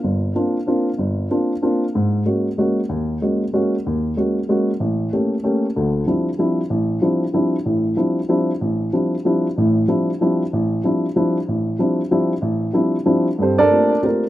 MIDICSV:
0, 0, Header, 1, 2, 480
1, 0, Start_track
1, 0, Tempo, 317628
1, 57, Time_signature, 3, 2, 24, 8
1, 21597, End_track
2, 0, Start_track
2, 0, Title_t, "Grand piano"
2, 0, Program_c, 0, 0
2, 54, Note_on_c, 0, 31, 61
2, 469, Note_off_c, 0, 31, 0
2, 528, Note_on_c, 0, 58, 50
2, 538, Note_on_c, 0, 60, 44
2, 538, Note_on_c, 0, 62, 49
2, 544, Note_on_c, 0, 65, 59
2, 850, Note_off_c, 0, 58, 0
2, 855, Note_off_c, 0, 60, 0
2, 855, Note_off_c, 0, 62, 0
2, 858, Note_off_c, 0, 65, 0
2, 1012, Note_on_c, 0, 58, 52
2, 1017, Note_on_c, 0, 60, 46
2, 1021, Note_on_c, 0, 62, 48
2, 1024, Note_on_c, 0, 65, 59
2, 1332, Note_off_c, 0, 58, 0
2, 1335, Note_off_c, 0, 60, 0
2, 1336, Note_off_c, 0, 62, 0
2, 1338, Note_off_c, 0, 65, 0
2, 1485, Note_on_c, 0, 31, 59
2, 1904, Note_off_c, 0, 31, 0
2, 1970, Note_on_c, 0, 58, 46
2, 1977, Note_on_c, 0, 60, 46
2, 1981, Note_on_c, 0, 65, 57
2, 1984, Note_on_c, 0, 62, 50
2, 2291, Note_off_c, 0, 58, 0
2, 2295, Note_off_c, 0, 60, 0
2, 2297, Note_off_c, 0, 65, 0
2, 2298, Note_off_c, 0, 62, 0
2, 2453, Note_on_c, 0, 58, 51
2, 2457, Note_on_c, 0, 62, 52
2, 2459, Note_on_c, 0, 60, 52
2, 2464, Note_on_c, 0, 65, 60
2, 2773, Note_off_c, 0, 58, 0
2, 2775, Note_off_c, 0, 62, 0
2, 2776, Note_off_c, 0, 60, 0
2, 2778, Note_off_c, 0, 65, 0
2, 2951, Note_on_c, 0, 44, 63
2, 3358, Note_off_c, 0, 44, 0
2, 3411, Note_on_c, 0, 56, 46
2, 3415, Note_on_c, 0, 61, 43
2, 3422, Note_on_c, 0, 58, 45
2, 3426, Note_on_c, 0, 66, 58
2, 3732, Note_off_c, 0, 56, 0
2, 3734, Note_off_c, 0, 61, 0
2, 3737, Note_off_c, 0, 58, 0
2, 3739, Note_off_c, 0, 66, 0
2, 3897, Note_on_c, 0, 56, 54
2, 3907, Note_on_c, 0, 61, 48
2, 3908, Note_on_c, 0, 58, 54
2, 3911, Note_on_c, 0, 66, 59
2, 4215, Note_off_c, 0, 56, 0
2, 4220, Note_off_c, 0, 58, 0
2, 4220, Note_off_c, 0, 61, 0
2, 4222, Note_off_c, 0, 66, 0
2, 4371, Note_on_c, 0, 39, 63
2, 4788, Note_off_c, 0, 39, 0
2, 4864, Note_on_c, 0, 56, 55
2, 4869, Note_on_c, 0, 58, 44
2, 4870, Note_on_c, 0, 61, 45
2, 4872, Note_on_c, 0, 66, 51
2, 5179, Note_off_c, 0, 56, 0
2, 5181, Note_off_c, 0, 58, 0
2, 5181, Note_off_c, 0, 61, 0
2, 5182, Note_off_c, 0, 66, 0
2, 5341, Note_on_c, 0, 56, 53
2, 5341, Note_on_c, 0, 58, 51
2, 5342, Note_on_c, 0, 61, 53
2, 5346, Note_on_c, 0, 66, 61
2, 5657, Note_off_c, 0, 56, 0
2, 5657, Note_off_c, 0, 58, 0
2, 5657, Note_off_c, 0, 61, 0
2, 5659, Note_off_c, 0, 66, 0
2, 5839, Note_on_c, 0, 39, 62
2, 6242, Note_off_c, 0, 39, 0
2, 6300, Note_on_c, 0, 56, 49
2, 6308, Note_on_c, 0, 61, 43
2, 6310, Note_on_c, 0, 58, 45
2, 6319, Note_on_c, 0, 66, 56
2, 6616, Note_off_c, 0, 56, 0
2, 6620, Note_off_c, 0, 61, 0
2, 6621, Note_off_c, 0, 58, 0
2, 6626, Note_off_c, 0, 66, 0
2, 6783, Note_on_c, 0, 56, 59
2, 6787, Note_on_c, 0, 58, 54
2, 6790, Note_on_c, 0, 61, 50
2, 6800, Note_on_c, 0, 66, 64
2, 7097, Note_off_c, 0, 56, 0
2, 7099, Note_off_c, 0, 58, 0
2, 7101, Note_off_c, 0, 61, 0
2, 7106, Note_off_c, 0, 66, 0
2, 7259, Note_on_c, 0, 33, 63
2, 7671, Note_off_c, 0, 33, 0
2, 7751, Note_on_c, 0, 57, 50
2, 7751, Note_on_c, 0, 58, 48
2, 7755, Note_on_c, 0, 61, 51
2, 7756, Note_on_c, 0, 67, 57
2, 8061, Note_off_c, 0, 57, 0
2, 8061, Note_off_c, 0, 58, 0
2, 8063, Note_off_c, 0, 61, 0
2, 8064, Note_off_c, 0, 67, 0
2, 8213, Note_on_c, 0, 57, 55
2, 8219, Note_on_c, 0, 61, 52
2, 8222, Note_on_c, 0, 58, 51
2, 8229, Note_on_c, 0, 67, 58
2, 8532, Note_off_c, 0, 57, 0
2, 8535, Note_off_c, 0, 61, 0
2, 8537, Note_off_c, 0, 58, 0
2, 8540, Note_off_c, 0, 67, 0
2, 8707, Note_on_c, 0, 50, 61
2, 8710, Note_on_c, 0, 38, 62
2, 9115, Note_off_c, 0, 50, 0
2, 9117, Note_off_c, 0, 38, 0
2, 9165, Note_on_c, 0, 53, 50
2, 9169, Note_on_c, 0, 55, 44
2, 9176, Note_on_c, 0, 60, 43
2, 9178, Note_on_c, 0, 62, 43
2, 9179, Note_on_c, 0, 64, 53
2, 9488, Note_off_c, 0, 53, 0
2, 9490, Note_off_c, 0, 55, 0
2, 9494, Note_off_c, 0, 60, 0
2, 9494, Note_off_c, 0, 62, 0
2, 9495, Note_off_c, 0, 64, 0
2, 9648, Note_on_c, 0, 55, 48
2, 9655, Note_on_c, 0, 53, 53
2, 9660, Note_on_c, 0, 60, 48
2, 9665, Note_on_c, 0, 64, 58
2, 9666, Note_on_c, 0, 62, 44
2, 9969, Note_off_c, 0, 55, 0
2, 9973, Note_off_c, 0, 53, 0
2, 9975, Note_off_c, 0, 60, 0
2, 9978, Note_off_c, 0, 62, 0
2, 9978, Note_off_c, 0, 64, 0
2, 10130, Note_on_c, 0, 33, 67
2, 10546, Note_off_c, 0, 33, 0
2, 10603, Note_on_c, 0, 53, 53
2, 10612, Note_on_c, 0, 55, 41
2, 10612, Note_on_c, 0, 60, 47
2, 10616, Note_on_c, 0, 62, 43
2, 10618, Note_on_c, 0, 64, 52
2, 10927, Note_off_c, 0, 53, 0
2, 10931, Note_off_c, 0, 55, 0
2, 10931, Note_off_c, 0, 60, 0
2, 10933, Note_off_c, 0, 62, 0
2, 10934, Note_off_c, 0, 64, 0
2, 11083, Note_on_c, 0, 55, 50
2, 11086, Note_on_c, 0, 53, 52
2, 11094, Note_on_c, 0, 62, 50
2, 11094, Note_on_c, 0, 64, 56
2, 11095, Note_on_c, 0, 60, 48
2, 11407, Note_off_c, 0, 55, 0
2, 11408, Note_off_c, 0, 53, 0
2, 11412, Note_off_c, 0, 60, 0
2, 11412, Note_off_c, 0, 62, 0
2, 11412, Note_off_c, 0, 64, 0
2, 11573, Note_on_c, 0, 33, 60
2, 11575, Note_on_c, 0, 45, 63
2, 11987, Note_off_c, 0, 33, 0
2, 11988, Note_off_c, 0, 45, 0
2, 12039, Note_on_c, 0, 53, 47
2, 12047, Note_on_c, 0, 55, 44
2, 12047, Note_on_c, 0, 60, 46
2, 12047, Note_on_c, 0, 64, 50
2, 12054, Note_on_c, 0, 62, 46
2, 12364, Note_off_c, 0, 53, 0
2, 12368, Note_off_c, 0, 55, 0
2, 12369, Note_off_c, 0, 60, 0
2, 12369, Note_off_c, 0, 64, 0
2, 12372, Note_off_c, 0, 62, 0
2, 12524, Note_on_c, 0, 53, 53
2, 12530, Note_on_c, 0, 60, 52
2, 12531, Note_on_c, 0, 55, 50
2, 12536, Note_on_c, 0, 64, 61
2, 12539, Note_on_c, 0, 62, 51
2, 12847, Note_off_c, 0, 53, 0
2, 12850, Note_off_c, 0, 55, 0
2, 12850, Note_off_c, 0, 60, 0
2, 12853, Note_off_c, 0, 64, 0
2, 12854, Note_off_c, 0, 62, 0
2, 13017, Note_on_c, 0, 33, 62
2, 13429, Note_off_c, 0, 33, 0
2, 13497, Note_on_c, 0, 53, 51
2, 13497, Note_on_c, 0, 60, 44
2, 13500, Note_on_c, 0, 62, 48
2, 13503, Note_on_c, 0, 55, 44
2, 13507, Note_on_c, 0, 64, 50
2, 13813, Note_off_c, 0, 53, 0
2, 13813, Note_off_c, 0, 60, 0
2, 13814, Note_off_c, 0, 62, 0
2, 13816, Note_off_c, 0, 55, 0
2, 13818, Note_off_c, 0, 64, 0
2, 13979, Note_on_c, 0, 53, 55
2, 13985, Note_on_c, 0, 55, 49
2, 13990, Note_on_c, 0, 62, 50
2, 13994, Note_on_c, 0, 60, 49
2, 13998, Note_on_c, 0, 64, 58
2, 14294, Note_off_c, 0, 53, 0
2, 14297, Note_off_c, 0, 55, 0
2, 14300, Note_off_c, 0, 62, 0
2, 14302, Note_off_c, 0, 60, 0
2, 14304, Note_off_c, 0, 64, 0
2, 14474, Note_on_c, 0, 33, 65
2, 14481, Note_on_c, 0, 45, 65
2, 14878, Note_off_c, 0, 33, 0
2, 14881, Note_off_c, 0, 45, 0
2, 14931, Note_on_c, 0, 53, 53
2, 14940, Note_on_c, 0, 55, 46
2, 14941, Note_on_c, 0, 64, 54
2, 14943, Note_on_c, 0, 60, 45
2, 14944, Note_on_c, 0, 62, 46
2, 15250, Note_off_c, 0, 53, 0
2, 15254, Note_off_c, 0, 55, 0
2, 15255, Note_off_c, 0, 64, 0
2, 15256, Note_off_c, 0, 60, 0
2, 15256, Note_off_c, 0, 62, 0
2, 15429, Note_on_c, 0, 53, 54
2, 15434, Note_on_c, 0, 55, 50
2, 15436, Note_on_c, 0, 60, 51
2, 15441, Note_on_c, 0, 62, 51
2, 15444, Note_on_c, 0, 64, 60
2, 15739, Note_off_c, 0, 53, 0
2, 15741, Note_off_c, 0, 55, 0
2, 15742, Note_off_c, 0, 60, 0
2, 15745, Note_off_c, 0, 62, 0
2, 15747, Note_off_c, 0, 64, 0
2, 15918, Note_on_c, 0, 33, 67
2, 16320, Note_off_c, 0, 33, 0
2, 16383, Note_on_c, 0, 53, 50
2, 16390, Note_on_c, 0, 60, 45
2, 16395, Note_on_c, 0, 55, 47
2, 16397, Note_on_c, 0, 62, 45
2, 16400, Note_on_c, 0, 64, 56
2, 16696, Note_off_c, 0, 53, 0
2, 16699, Note_off_c, 0, 60, 0
2, 16702, Note_off_c, 0, 55, 0
2, 16703, Note_off_c, 0, 62, 0
2, 16704, Note_off_c, 0, 64, 0
2, 16863, Note_on_c, 0, 53, 55
2, 16871, Note_on_c, 0, 55, 51
2, 16871, Note_on_c, 0, 60, 48
2, 16872, Note_on_c, 0, 62, 54
2, 16873, Note_on_c, 0, 64, 62
2, 17176, Note_off_c, 0, 53, 0
2, 17180, Note_off_c, 0, 55, 0
2, 17180, Note_off_c, 0, 60, 0
2, 17181, Note_off_c, 0, 62, 0
2, 17181, Note_off_c, 0, 64, 0
2, 17357, Note_on_c, 0, 33, 59
2, 17759, Note_off_c, 0, 33, 0
2, 17819, Note_on_c, 0, 53, 49
2, 17822, Note_on_c, 0, 55, 46
2, 17828, Note_on_c, 0, 62, 47
2, 17831, Note_on_c, 0, 60, 49
2, 17833, Note_on_c, 0, 64, 53
2, 18134, Note_off_c, 0, 53, 0
2, 18136, Note_off_c, 0, 55, 0
2, 18139, Note_off_c, 0, 62, 0
2, 18140, Note_off_c, 0, 60, 0
2, 18141, Note_off_c, 0, 64, 0
2, 18302, Note_on_c, 0, 53, 57
2, 18307, Note_on_c, 0, 55, 53
2, 18307, Note_on_c, 0, 60, 53
2, 18309, Note_on_c, 0, 62, 54
2, 18312, Note_on_c, 0, 64, 66
2, 18616, Note_off_c, 0, 53, 0
2, 18619, Note_off_c, 0, 55, 0
2, 18619, Note_off_c, 0, 60, 0
2, 18620, Note_off_c, 0, 62, 0
2, 18621, Note_off_c, 0, 64, 0
2, 18769, Note_on_c, 0, 33, 65
2, 19186, Note_off_c, 0, 33, 0
2, 19243, Note_on_c, 0, 53, 50
2, 19248, Note_on_c, 0, 55, 53
2, 19251, Note_on_c, 0, 60, 50
2, 19255, Note_on_c, 0, 62, 49
2, 19262, Note_on_c, 0, 64, 60
2, 19567, Note_off_c, 0, 53, 0
2, 19570, Note_off_c, 0, 55, 0
2, 19571, Note_off_c, 0, 60, 0
2, 19573, Note_off_c, 0, 62, 0
2, 19577, Note_off_c, 0, 64, 0
2, 19731, Note_on_c, 0, 53, 60
2, 19733, Note_on_c, 0, 55, 52
2, 19735, Note_on_c, 0, 60, 52
2, 19738, Note_on_c, 0, 62, 52
2, 19743, Note_on_c, 0, 64, 59
2, 20052, Note_off_c, 0, 53, 0
2, 20053, Note_off_c, 0, 55, 0
2, 20054, Note_off_c, 0, 60, 0
2, 20056, Note_off_c, 0, 62, 0
2, 20058, Note_off_c, 0, 64, 0
2, 20230, Note_on_c, 0, 43, 59
2, 20275, Note_on_c, 0, 67, 56
2, 20277, Note_on_c, 0, 60, 57
2, 20278, Note_on_c, 0, 69, 58
2, 20289, Note_on_c, 0, 72, 75
2, 20522, Note_off_c, 0, 69, 0
2, 20530, Note_on_c, 0, 74, 92
2, 20534, Note_on_c, 0, 70, 72
2, 20538, Note_off_c, 0, 67, 0
2, 20538, Note_on_c, 0, 62, 76
2, 20539, Note_off_c, 0, 60, 0
2, 20545, Note_on_c, 0, 69, 83
2, 20546, Note_off_c, 0, 72, 0
2, 20639, Note_off_c, 0, 43, 0
2, 20715, Note_on_c, 0, 57, 48
2, 20717, Note_on_c, 0, 58, 44
2, 20718, Note_on_c, 0, 65, 44
2, 20723, Note_on_c, 0, 60, 44
2, 20726, Note_on_c, 0, 67, 51
2, 21025, Note_off_c, 0, 57, 0
2, 21026, Note_off_c, 0, 58, 0
2, 21027, Note_off_c, 0, 65, 0
2, 21029, Note_off_c, 0, 60, 0
2, 21031, Note_off_c, 0, 67, 0
2, 21141, Note_off_c, 0, 74, 0
2, 21144, Note_off_c, 0, 70, 0
2, 21145, Note_off_c, 0, 62, 0
2, 21149, Note_off_c, 0, 69, 0
2, 21199, Note_on_c, 0, 57, 49
2, 21201, Note_on_c, 0, 58, 48
2, 21202, Note_on_c, 0, 60, 49
2, 21202, Note_on_c, 0, 65, 50
2, 21204, Note_on_c, 0, 67, 60
2, 21226, Note_off_c, 0, 65, 0
2, 21230, Note_off_c, 0, 67, 0
2, 21244, Note_on_c, 0, 70, 59
2, 21248, Note_on_c, 0, 65, 47
2, 21252, Note_on_c, 0, 67, 47
2, 21505, Note_off_c, 0, 70, 0
2, 21507, Note_off_c, 0, 65, 0
2, 21508, Note_off_c, 0, 57, 0
2, 21509, Note_off_c, 0, 58, 0
2, 21509, Note_off_c, 0, 67, 0
2, 21510, Note_off_c, 0, 60, 0
2, 21597, End_track
0, 0, End_of_file